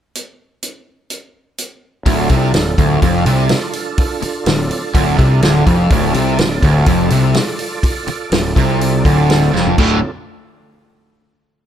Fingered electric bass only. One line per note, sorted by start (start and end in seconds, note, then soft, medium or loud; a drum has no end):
2.06 2.29 D1 medium
2.30 2.53 C2 loud
2.55 2.78 D1 medium
2.78 3.01 D1 medium
3.02 3.25 F1 medium
3.25 3.48 C2 medium
4.23 muted fingered electric bass stroke soft
4.46 4.69 D1 medium
4.94 5.17 D1 medium
5.19 5.41 C2 medium
5.43 5.65 D1 medium
5.67 5.89 F1 medium
5.91 6.13 D1 medium
6.14 6.37 C2 medium
6.39 6.62 D1 medium
6.62 6.85 D1 medium
6.87 7.10 F1 medium
7.11 7.34 C2 medium
8.07 muted fingered electric bass stroke soft
8.32 8.55 D1 medium
8.56 9.02 C2 medium
9.05 9.51 D1 medium
9.54 9.77 F1 medium
9.78 10.01 D1 medium